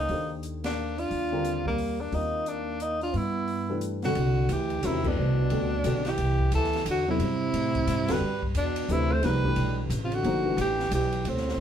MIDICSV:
0, 0, Header, 1, 6, 480
1, 0, Start_track
1, 0, Tempo, 338219
1, 125, Time_signature, 3, 2, 24, 8
1, 16464, End_track
2, 0, Start_track
2, 0, Title_t, "Tenor saxophone"
2, 0, Program_c, 0, 66
2, 0, Note_on_c, 0, 63, 84
2, 474, Note_off_c, 0, 63, 0
2, 926, Note_on_c, 0, 62, 87
2, 1401, Note_on_c, 0, 65, 91
2, 1422, Note_off_c, 0, 62, 0
2, 2359, Note_off_c, 0, 65, 0
2, 2374, Note_on_c, 0, 58, 85
2, 2846, Note_on_c, 0, 62, 75
2, 2868, Note_off_c, 0, 58, 0
2, 3035, Note_on_c, 0, 63, 84
2, 3057, Note_off_c, 0, 62, 0
2, 3516, Note_on_c, 0, 62, 84
2, 3537, Note_off_c, 0, 63, 0
2, 3996, Note_on_c, 0, 63, 87
2, 4017, Note_off_c, 0, 62, 0
2, 4287, Note_off_c, 0, 63, 0
2, 4298, Note_on_c, 0, 65, 80
2, 4493, Note_on_c, 0, 64, 78
2, 4514, Note_off_c, 0, 65, 0
2, 5438, Note_off_c, 0, 64, 0
2, 5745, Note_on_c, 0, 66, 79
2, 6418, Note_on_c, 0, 67, 81
2, 6439, Note_off_c, 0, 66, 0
2, 6889, Note_on_c, 0, 64, 87
2, 6910, Note_off_c, 0, 67, 0
2, 7205, Note_on_c, 0, 62, 95
2, 7226, Note_off_c, 0, 64, 0
2, 8644, Note_on_c, 0, 67, 91
2, 8666, Note_off_c, 0, 62, 0
2, 9283, Note_off_c, 0, 67, 0
2, 9293, Note_on_c, 0, 69, 87
2, 9724, Note_off_c, 0, 69, 0
2, 9796, Note_on_c, 0, 66, 96
2, 10049, Note_off_c, 0, 66, 0
2, 10078, Note_on_c, 0, 64, 95
2, 11522, Note_on_c, 0, 71, 94
2, 11543, Note_off_c, 0, 64, 0
2, 11979, Note_off_c, 0, 71, 0
2, 12166, Note_on_c, 0, 62, 98
2, 12657, Note_on_c, 0, 64, 101
2, 12679, Note_off_c, 0, 62, 0
2, 12957, Note_on_c, 0, 72, 97
2, 12978, Note_off_c, 0, 64, 0
2, 13126, Note_on_c, 0, 71, 109
2, 13147, Note_off_c, 0, 72, 0
2, 13961, Note_off_c, 0, 71, 0
2, 14254, Note_on_c, 0, 65, 73
2, 14398, Note_on_c, 0, 66, 102
2, 14420, Note_off_c, 0, 65, 0
2, 15034, Note_off_c, 0, 66, 0
2, 15055, Note_on_c, 0, 67, 102
2, 15480, Note_off_c, 0, 67, 0
2, 15529, Note_on_c, 0, 67, 94
2, 16017, Note_on_c, 0, 60, 78
2, 16038, Note_off_c, 0, 67, 0
2, 16464, Note_off_c, 0, 60, 0
2, 16464, End_track
3, 0, Start_track
3, 0, Title_t, "Upright piano"
3, 0, Program_c, 1, 0
3, 140, Note_on_c, 1, 51, 53
3, 141, Note_on_c, 1, 69, 46
3, 144, Note_on_c, 1, 62, 48
3, 147, Note_on_c, 1, 67, 49
3, 152, Note_on_c, 1, 72, 57
3, 1469, Note_off_c, 1, 51, 0
3, 1469, Note_off_c, 1, 69, 0
3, 1471, Note_off_c, 1, 62, 0
3, 1473, Note_off_c, 1, 67, 0
3, 1475, Note_off_c, 1, 72, 0
3, 1870, Note_on_c, 1, 55, 60
3, 1871, Note_on_c, 1, 50, 67
3, 1876, Note_on_c, 1, 60, 64
3, 1878, Note_on_c, 1, 65, 55
3, 1885, Note_on_c, 1, 70, 71
3, 2497, Note_off_c, 1, 50, 0
3, 2497, Note_off_c, 1, 55, 0
3, 2500, Note_off_c, 1, 60, 0
3, 2501, Note_off_c, 1, 65, 0
3, 2504, Note_off_c, 1, 70, 0
3, 3003, Note_on_c, 1, 55, 44
3, 3010, Note_on_c, 1, 51, 46
3, 3010, Note_on_c, 1, 60, 43
3, 3015, Note_on_c, 1, 65, 42
3, 3016, Note_on_c, 1, 70, 57
3, 4345, Note_off_c, 1, 55, 0
3, 4348, Note_off_c, 1, 51, 0
3, 4349, Note_off_c, 1, 60, 0
3, 4351, Note_off_c, 1, 65, 0
3, 4352, Note_off_c, 1, 70, 0
3, 5239, Note_on_c, 1, 57, 57
3, 5240, Note_on_c, 1, 52, 57
3, 5241, Note_on_c, 1, 62, 54
3, 5246, Note_on_c, 1, 67, 53
3, 5249, Note_on_c, 1, 71, 70
3, 5691, Note_off_c, 1, 52, 0
3, 5691, Note_off_c, 1, 57, 0
3, 5691, Note_off_c, 1, 62, 0
3, 5694, Note_off_c, 1, 67, 0
3, 5696, Note_off_c, 1, 71, 0
3, 5730, Note_on_c, 1, 35, 59
3, 5731, Note_on_c, 1, 50, 60
3, 5735, Note_on_c, 1, 55, 63
3, 5736, Note_on_c, 1, 66, 61
3, 5738, Note_on_c, 1, 60, 61
3, 5738, Note_on_c, 1, 69, 70
3, 5888, Note_off_c, 1, 35, 0
3, 5889, Note_off_c, 1, 50, 0
3, 5891, Note_off_c, 1, 55, 0
3, 5891, Note_off_c, 1, 66, 0
3, 5892, Note_off_c, 1, 60, 0
3, 5892, Note_off_c, 1, 69, 0
3, 6863, Note_on_c, 1, 51, 57
3, 6870, Note_on_c, 1, 66, 54
3, 6871, Note_on_c, 1, 56, 60
3, 6871, Note_on_c, 1, 61, 53
3, 6871, Note_on_c, 1, 70, 69
3, 7133, Note_off_c, 1, 51, 0
3, 7136, Note_off_c, 1, 66, 0
3, 7137, Note_off_c, 1, 56, 0
3, 7137, Note_off_c, 1, 61, 0
3, 7137, Note_off_c, 1, 70, 0
3, 7160, Note_on_c, 1, 52, 61
3, 7163, Note_on_c, 1, 57, 54
3, 7167, Note_on_c, 1, 67, 59
3, 7167, Note_on_c, 1, 71, 68
3, 7171, Note_on_c, 1, 62, 53
3, 7338, Note_off_c, 1, 71, 0
3, 7349, Note_on_c, 1, 72, 51
3, 7350, Note_on_c, 1, 55, 57
3, 7356, Note_on_c, 1, 66, 48
3, 7358, Note_on_c, 1, 74, 59
3, 7359, Note_on_c, 1, 71, 54
3, 7581, Note_off_c, 1, 52, 0
3, 7583, Note_off_c, 1, 57, 0
3, 7585, Note_off_c, 1, 67, 0
3, 7587, Note_off_c, 1, 62, 0
3, 7799, Note_off_c, 1, 55, 0
3, 7807, Note_off_c, 1, 66, 0
3, 7808, Note_off_c, 1, 72, 0
3, 7812, Note_off_c, 1, 74, 0
3, 7813, Note_off_c, 1, 71, 0
3, 7821, Note_on_c, 1, 55, 59
3, 7822, Note_on_c, 1, 50, 62
3, 7825, Note_on_c, 1, 60, 60
3, 7829, Note_on_c, 1, 66, 59
3, 7829, Note_on_c, 1, 69, 67
3, 8091, Note_off_c, 1, 55, 0
3, 8092, Note_off_c, 1, 50, 0
3, 8093, Note_off_c, 1, 60, 0
3, 8095, Note_off_c, 1, 66, 0
3, 8096, Note_off_c, 1, 69, 0
3, 8288, Note_on_c, 1, 50, 62
3, 8294, Note_on_c, 1, 60, 56
3, 8295, Note_on_c, 1, 55, 57
3, 8299, Note_on_c, 1, 69, 72
3, 8300, Note_on_c, 1, 66, 57
3, 8565, Note_off_c, 1, 50, 0
3, 8568, Note_off_c, 1, 60, 0
3, 8569, Note_off_c, 1, 55, 0
3, 8571, Note_off_c, 1, 66, 0
3, 8571, Note_off_c, 1, 69, 0
3, 10046, Note_on_c, 1, 54, 63
3, 10048, Note_on_c, 1, 59, 60
3, 10049, Note_on_c, 1, 64, 64
3, 10056, Note_on_c, 1, 72, 70
3, 10057, Note_on_c, 1, 69, 67
3, 10206, Note_off_c, 1, 54, 0
3, 10206, Note_off_c, 1, 59, 0
3, 10207, Note_off_c, 1, 64, 0
3, 10210, Note_off_c, 1, 72, 0
3, 10211, Note_off_c, 1, 69, 0
3, 11476, Note_on_c, 1, 50, 70
3, 11477, Note_on_c, 1, 55, 65
3, 11480, Note_on_c, 1, 66, 64
3, 11481, Note_on_c, 1, 60, 65
3, 11482, Note_on_c, 1, 69, 86
3, 11639, Note_off_c, 1, 50, 0
3, 11640, Note_off_c, 1, 55, 0
3, 11641, Note_off_c, 1, 66, 0
3, 11642, Note_off_c, 1, 60, 0
3, 11642, Note_off_c, 1, 69, 0
3, 12625, Note_on_c, 1, 57, 59
3, 12627, Note_on_c, 1, 52, 60
3, 12633, Note_on_c, 1, 62, 55
3, 12639, Note_on_c, 1, 71, 71
3, 12640, Note_on_c, 1, 67, 57
3, 13108, Note_on_c, 1, 53, 62
3, 13110, Note_on_c, 1, 63, 58
3, 13114, Note_on_c, 1, 58, 65
3, 13117, Note_on_c, 1, 68, 57
3, 13123, Note_on_c, 1, 72, 73
3, 13339, Note_off_c, 1, 57, 0
3, 13340, Note_off_c, 1, 52, 0
3, 13343, Note_off_c, 1, 62, 0
3, 13346, Note_off_c, 1, 67, 0
3, 13346, Note_off_c, 1, 71, 0
3, 13371, Note_off_c, 1, 53, 0
3, 13372, Note_off_c, 1, 63, 0
3, 13374, Note_off_c, 1, 58, 0
3, 13376, Note_off_c, 1, 68, 0
3, 13379, Note_off_c, 1, 72, 0
3, 13409, Note_on_c, 1, 62, 64
3, 13411, Note_on_c, 1, 52, 72
3, 13412, Note_on_c, 1, 57, 60
3, 13413, Note_on_c, 1, 67, 63
3, 13414, Note_on_c, 1, 71, 72
3, 14432, Note_off_c, 1, 62, 0
3, 14433, Note_off_c, 1, 52, 0
3, 14433, Note_off_c, 1, 57, 0
3, 14434, Note_off_c, 1, 67, 0
3, 14435, Note_off_c, 1, 71, 0
3, 14546, Note_on_c, 1, 53, 58
3, 14546, Note_on_c, 1, 58, 60
3, 14552, Note_on_c, 1, 72, 70
3, 14554, Note_on_c, 1, 68, 60
3, 14555, Note_on_c, 1, 63, 54
3, 14808, Note_off_c, 1, 53, 0
3, 14808, Note_off_c, 1, 58, 0
3, 14812, Note_off_c, 1, 72, 0
3, 14813, Note_off_c, 1, 63, 0
3, 14813, Note_off_c, 1, 68, 0
3, 14842, Note_on_c, 1, 57, 56
3, 14842, Note_on_c, 1, 62, 57
3, 14843, Note_on_c, 1, 52, 65
3, 14843, Note_on_c, 1, 71, 73
3, 14846, Note_on_c, 1, 67, 56
3, 15867, Note_off_c, 1, 52, 0
3, 15867, Note_off_c, 1, 57, 0
3, 15867, Note_off_c, 1, 62, 0
3, 15867, Note_off_c, 1, 71, 0
3, 15869, Note_off_c, 1, 67, 0
3, 16464, End_track
4, 0, Start_track
4, 0, Title_t, "Trombone"
4, 0, Program_c, 2, 57
4, 0, Note_on_c, 2, 58, 67
4, 463, Note_off_c, 2, 58, 0
4, 899, Note_on_c, 2, 58, 72
4, 1389, Note_on_c, 2, 62, 81
4, 1410, Note_off_c, 2, 58, 0
4, 2341, Note_off_c, 2, 62, 0
4, 2349, Note_on_c, 2, 55, 65
4, 2848, Note_on_c, 2, 58, 58
4, 2869, Note_off_c, 2, 55, 0
4, 3020, Note_off_c, 2, 58, 0
4, 3020, Note_on_c, 2, 58, 65
4, 3503, Note_off_c, 2, 58, 0
4, 3503, Note_on_c, 2, 58, 66
4, 3987, Note_off_c, 2, 58, 0
4, 3987, Note_on_c, 2, 58, 69
4, 4273, Note_off_c, 2, 58, 0
4, 4282, Note_on_c, 2, 62, 62
4, 4458, Note_on_c, 2, 59, 64
4, 4479, Note_off_c, 2, 62, 0
4, 5421, Note_off_c, 2, 59, 0
4, 5727, Note_on_c, 2, 50, 72
4, 6395, Note_on_c, 2, 52, 83
4, 6417, Note_off_c, 2, 50, 0
4, 6866, Note_on_c, 2, 48, 72
4, 6887, Note_off_c, 2, 52, 0
4, 7172, Note_on_c, 2, 47, 77
4, 7194, Note_off_c, 2, 48, 0
4, 8598, Note_on_c, 2, 52, 75
4, 8620, Note_off_c, 2, 47, 0
4, 9260, Note_off_c, 2, 52, 0
4, 9274, Note_on_c, 2, 52, 92
4, 9714, Note_off_c, 2, 52, 0
4, 9736, Note_on_c, 2, 50, 79
4, 10017, Note_off_c, 2, 50, 0
4, 10048, Note_on_c, 2, 48, 83
4, 11497, Note_on_c, 2, 55, 86
4, 11518, Note_off_c, 2, 48, 0
4, 11967, Note_off_c, 2, 55, 0
4, 12156, Note_on_c, 2, 47, 78
4, 12627, Note_on_c, 2, 48, 81
4, 12648, Note_off_c, 2, 47, 0
4, 12944, Note_on_c, 2, 57, 83
4, 12965, Note_off_c, 2, 48, 0
4, 13116, Note_on_c, 2, 55, 80
4, 13137, Note_off_c, 2, 57, 0
4, 13956, Note_off_c, 2, 55, 0
4, 14230, Note_on_c, 2, 48, 72
4, 14391, Note_on_c, 2, 50, 76
4, 14412, Note_off_c, 2, 48, 0
4, 15031, Note_off_c, 2, 50, 0
4, 15048, Note_on_c, 2, 52, 80
4, 15477, Note_off_c, 2, 52, 0
4, 15506, Note_on_c, 2, 52, 77
4, 15986, Note_on_c, 2, 45, 68
4, 16008, Note_off_c, 2, 52, 0
4, 16464, Note_off_c, 2, 45, 0
4, 16464, End_track
5, 0, Start_track
5, 0, Title_t, "Upright bass"
5, 0, Program_c, 3, 32
5, 125, Note_on_c, 3, 39, 74
5, 1514, Note_off_c, 3, 39, 0
5, 1570, Note_on_c, 3, 39, 76
5, 2958, Note_off_c, 3, 39, 0
5, 3011, Note_on_c, 3, 39, 73
5, 4400, Note_off_c, 3, 39, 0
5, 4450, Note_on_c, 3, 43, 78
5, 5841, Note_off_c, 3, 43, 0
5, 5891, Note_on_c, 3, 36, 76
5, 6362, Note_off_c, 3, 36, 0
5, 6368, Note_on_c, 3, 38, 93
5, 6841, Note_off_c, 3, 38, 0
5, 6860, Note_on_c, 3, 40, 94
5, 7327, Note_off_c, 3, 40, 0
5, 7337, Note_on_c, 3, 36, 81
5, 7806, Note_off_c, 3, 36, 0
5, 7817, Note_on_c, 3, 38, 95
5, 8285, Note_off_c, 3, 38, 0
5, 8292, Note_on_c, 3, 35, 92
5, 8762, Note_off_c, 3, 35, 0
5, 8770, Note_on_c, 3, 36, 76
5, 9238, Note_off_c, 3, 36, 0
5, 9246, Note_on_c, 3, 38, 89
5, 9719, Note_off_c, 3, 38, 0
5, 9726, Note_on_c, 3, 40, 100
5, 10199, Note_off_c, 3, 40, 0
5, 10204, Note_on_c, 3, 43, 84
5, 10677, Note_off_c, 3, 43, 0
5, 10688, Note_on_c, 3, 45, 93
5, 11159, Note_off_c, 3, 45, 0
5, 11168, Note_on_c, 3, 44, 96
5, 11328, Note_off_c, 3, 44, 0
5, 11328, Note_on_c, 3, 43, 60
5, 11478, Note_off_c, 3, 43, 0
5, 11487, Note_on_c, 3, 40, 65
5, 11635, Note_off_c, 3, 40, 0
5, 11643, Note_on_c, 3, 43, 76
5, 12115, Note_off_c, 3, 43, 0
5, 12127, Note_on_c, 3, 40, 89
5, 12597, Note_off_c, 3, 40, 0
5, 12611, Note_on_c, 3, 38, 106
5, 13078, Note_off_c, 3, 38, 0
5, 13095, Note_on_c, 3, 36, 80
5, 13560, Note_off_c, 3, 36, 0
5, 13569, Note_on_c, 3, 35, 100
5, 14037, Note_off_c, 3, 35, 0
5, 14043, Note_on_c, 3, 33, 96
5, 14513, Note_off_c, 3, 33, 0
5, 14520, Note_on_c, 3, 31, 83
5, 14991, Note_off_c, 3, 31, 0
5, 15004, Note_on_c, 3, 33, 100
5, 15472, Note_off_c, 3, 33, 0
5, 15482, Note_on_c, 3, 35, 96
5, 15951, Note_off_c, 3, 35, 0
5, 15964, Note_on_c, 3, 38, 83
5, 16424, Note_off_c, 3, 38, 0
5, 16464, End_track
6, 0, Start_track
6, 0, Title_t, "Drums"
6, 121, Note_on_c, 9, 46, 38
6, 263, Note_off_c, 9, 46, 0
6, 610, Note_on_c, 9, 42, 47
6, 751, Note_off_c, 9, 42, 0
6, 909, Note_on_c, 9, 51, 62
6, 915, Note_on_c, 9, 38, 67
6, 1051, Note_off_c, 9, 51, 0
6, 1056, Note_off_c, 9, 38, 0
6, 1394, Note_on_c, 9, 46, 34
6, 1536, Note_off_c, 9, 46, 0
6, 1573, Note_on_c, 9, 46, 42
6, 1715, Note_off_c, 9, 46, 0
6, 2052, Note_on_c, 9, 42, 46
6, 2194, Note_off_c, 9, 42, 0
6, 2355, Note_on_c, 9, 36, 47
6, 2497, Note_off_c, 9, 36, 0
6, 2531, Note_on_c, 9, 46, 43
6, 2673, Note_off_c, 9, 46, 0
6, 3014, Note_on_c, 9, 46, 39
6, 3156, Note_off_c, 9, 46, 0
6, 3494, Note_on_c, 9, 42, 47
6, 3636, Note_off_c, 9, 42, 0
6, 3973, Note_on_c, 9, 42, 47
6, 4115, Note_off_c, 9, 42, 0
6, 4275, Note_on_c, 9, 46, 34
6, 4417, Note_off_c, 9, 46, 0
6, 4455, Note_on_c, 9, 46, 38
6, 4597, Note_off_c, 9, 46, 0
6, 4934, Note_on_c, 9, 46, 39
6, 5076, Note_off_c, 9, 46, 0
6, 5409, Note_on_c, 9, 42, 52
6, 5551, Note_off_c, 9, 42, 0
6, 5711, Note_on_c, 9, 46, 36
6, 5716, Note_on_c, 9, 38, 48
6, 5852, Note_off_c, 9, 46, 0
6, 5858, Note_off_c, 9, 38, 0
6, 5892, Note_on_c, 9, 51, 64
6, 6033, Note_off_c, 9, 51, 0
6, 6370, Note_on_c, 9, 44, 49
6, 6370, Note_on_c, 9, 51, 64
6, 6511, Note_off_c, 9, 44, 0
6, 6511, Note_off_c, 9, 51, 0
6, 6670, Note_on_c, 9, 51, 44
6, 6812, Note_off_c, 9, 51, 0
6, 6850, Note_on_c, 9, 44, 55
6, 6850, Note_on_c, 9, 51, 68
6, 6992, Note_off_c, 9, 44, 0
6, 6992, Note_off_c, 9, 51, 0
6, 7156, Note_on_c, 9, 36, 83
6, 7157, Note_on_c, 9, 49, 74
6, 7298, Note_off_c, 9, 36, 0
6, 7299, Note_off_c, 9, 49, 0
6, 7806, Note_on_c, 9, 51, 57
6, 7948, Note_off_c, 9, 51, 0
6, 8287, Note_on_c, 9, 44, 65
6, 8287, Note_on_c, 9, 51, 72
6, 8429, Note_off_c, 9, 44, 0
6, 8429, Note_off_c, 9, 51, 0
6, 8582, Note_on_c, 9, 51, 47
6, 8588, Note_on_c, 9, 38, 42
6, 8724, Note_off_c, 9, 51, 0
6, 8730, Note_off_c, 9, 38, 0
6, 8765, Note_on_c, 9, 51, 58
6, 8907, Note_off_c, 9, 51, 0
6, 9073, Note_on_c, 9, 36, 66
6, 9215, Note_off_c, 9, 36, 0
6, 9247, Note_on_c, 9, 44, 47
6, 9247, Note_on_c, 9, 51, 72
6, 9389, Note_off_c, 9, 44, 0
6, 9389, Note_off_c, 9, 51, 0
6, 9419, Note_on_c, 9, 38, 29
6, 9552, Note_on_c, 9, 51, 49
6, 9561, Note_off_c, 9, 38, 0
6, 9581, Note_on_c, 9, 38, 44
6, 9694, Note_off_c, 9, 51, 0
6, 9723, Note_off_c, 9, 38, 0
6, 9732, Note_on_c, 9, 44, 56
6, 9732, Note_on_c, 9, 51, 78
6, 9874, Note_off_c, 9, 44, 0
6, 9874, Note_off_c, 9, 51, 0
6, 10213, Note_on_c, 9, 51, 62
6, 10355, Note_off_c, 9, 51, 0
6, 10696, Note_on_c, 9, 51, 66
6, 10837, Note_off_c, 9, 51, 0
6, 10995, Note_on_c, 9, 51, 47
6, 10998, Note_on_c, 9, 36, 55
6, 11137, Note_off_c, 9, 51, 0
6, 11140, Note_off_c, 9, 36, 0
6, 11175, Note_on_c, 9, 44, 50
6, 11175, Note_on_c, 9, 51, 70
6, 11317, Note_off_c, 9, 44, 0
6, 11317, Note_off_c, 9, 51, 0
6, 11472, Note_on_c, 9, 51, 69
6, 11478, Note_on_c, 9, 38, 75
6, 11614, Note_off_c, 9, 51, 0
6, 11620, Note_off_c, 9, 38, 0
6, 11957, Note_on_c, 9, 36, 64
6, 12099, Note_off_c, 9, 36, 0
6, 12128, Note_on_c, 9, 44, 53
6, 12128, Note_on_c, 9, 51, 68
6, 12270, Note_off_c, 9, 44, 0
6, 12270, Note_off_c, 9, 51, 0
6, 12431, Note_on_c, 9, 51, 68
6, 12573, Note_off_c, 9, 51, 0
6, 12611, Note_on_c, 9, 44, 64
6, 12753, Note_off_c, 9, 44, 0
6, 13095, Note_on_c, 9, 51, 61
6, 13100, Note_on_c, 9, 38, 39
6, 13236, Note_off_c, 9, 51, 0
6, 13242, Note_off_c, 9, 38, 0
6, 13397, Note_on_c, 9, 36, 55
6, 13539, Note_off_c, 9, 36, 0
6, 13566, Note_on_c, 9, 51, 60
6, 13708, Note_off_c, 9, 51, 0
6, 14053, Note_on_c, 9, 44, 68
6, 14053, Note_on_c, 9, 51, 68
6, 14195, Note_off_c, 9, 44, 0
6, 14195, Note_off_c, 9, 51, 0
6, 14357, Note_on_c, 9, 51, 45
6, 14499, Note_off_c, 9, 51, 0
6, 14537, Note_on_c, 9, 51, 58
6, 14679, Note_off_c, 9, 51, 0
6, 15013, Note_on_c, 9, 44, 63
6, 15013, Note_on_c, 9, 51, 74
6, 15155, Note_off_c, 9, 44, 0
6, 15155, Note_off_c, 9, 51, 0
6, 15318, Note_on_c, 9, 38, 43
6, 15460, Note_off_c, 9, 38, 0
6, 15490, Note_on_c, 9, 44, 53
6, 15490, Note_on_c, 9, 51, 80
6, 15632, Note_off_c, 9, 44, 0
6, 15632, Note_off_c, 9, 51, 0
6, 15787, Note_on_c, 9, 51, 48
6, 15929, Note_off_c, 9, 51, 0
6, 15966, Note_on_c, 9, 51, 62
6, 16108, Note_off_c, 9, 51, 0
6, 16136, Note_on_c, 9, 38, 29
6, 16278, Note_off_c, 9, 38, 0
6, 16299, Note_on_c, 9, 38, 43
6, 16441, Note_off_c, 9, 38, 0
6, 16464, End_track
0, 0, End_of_file